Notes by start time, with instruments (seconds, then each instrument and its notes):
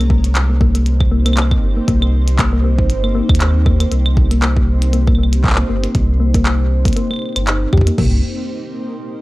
Already playing: sub bass C2, ambient pad A#3 C4 D#4 G4 C5
0.01 closed hi-hat
0.10 synth arpeggio sound A#3, kick
0.24 closed hi-hat
0.35 clap, closed hi-hat
0.49 synth arpeggio sound A#3
0.61 synth arpeggio sound A#3, kick
0.75 synth arpeggio sound A#3, closed hi-hat
0.86 closed hi-hat
1.00 kick, claves
1.11 synth arpeggio sound A#3
1.26 synth arpeggio sound A#3, closed hi-hat, claves
1.33 synth arpeggio sound A#3, clap, closed hi-hat, claves
1.42 claves
1.51 kick, claves
1.62 sub bass G1
1.77 synth arpeggio sound A#3
1.88 sub bass C2, synth arpeggio sound A#3, kick, closed hi-hat
2.02 synth arpeggio sound A#3, claves
2.28 closed hi-hat
2.39 synth arpeggio sound A#3, kick, clap, closed hi-hat
2.53 synth arpeggio sound A#3
2.64 synth arpeggio sound A#3
2.78 kick
2.90 sub bass G1, closed hi-hat
3.04 synth arpeggio sound A#3, claves
3.15 synth arpeggio sound A#3
3.29 sub bass D#2, synth arpeggio sound A#3, kick, claves
3.35 closed hi-hat
3.41 clap, closed hi-hat
3.66 synth arpeggio sound A#3, kick, claves
3.80 synth arpeggio sound A#3, closed hi-hat, claves
3.91 sub bass C2, synth arpeggio sound A#3, closed hi-hat
4.06 claves
4.17 kick
4.31 synth arpeggio sound A#3, closed hi-hat
4.42 synth arpeggio sound A#3, clap, closed hi-hat
4.56 synth arpeggio sound A#3, kick
4.82 closed hi-hat
4.93 synth arpeggio sound A#3, closed hi-hat
5.07 synth arpeggio sound A#3, kick, claves
5.15 synth arpeggio sound A#3, claves
5.23 claves
5.33 closed hi-hat
5.44 kick, clap
5.47 clap
5.50 clap
5.53 clap
5.55 synth arpeggio sound A#3, clap
5.69 sub bass G1, synth arpeggio sound A#3
5.83 synth arpeggio sound A#3, closed hi-hat
5.95 sub bass C2, kick, closed hi-hat
6.20 synth arpeggio sound A#3
6.34 synth arpeggio sound A#3, kick, closed hi-hat
6.45 synth arpeggio sound A#3, clap, closed hi-hat
6.85 synth arpeggio sound A#3, kick, closed hi-hat
6.88 closed hi-hat
6.93 synth arpeggio sound A#3, closed hi-hat
6.97 closed hi-hat
7.11 synth arpeggio sound A#3, claves
7.14 claves
7.16 claves
7.19 claves
7.22 claves
7.29 claves
7.33 sub bass G1, synth arpeggio sound C5, closed hi-hat, claves
7.36 claves
7.47 synth arpeggio sound D#4, clap, closed hi-hat
7.73 sub bass F2, synth arpeggio sound G4, kick, claves
7.77 kick
7.81 kick
7.87 synth arpeggio sound A#3, closed hi-hat
7.98 sub bass C2, synth arpeggio sound A#3, kick, floor tom, crash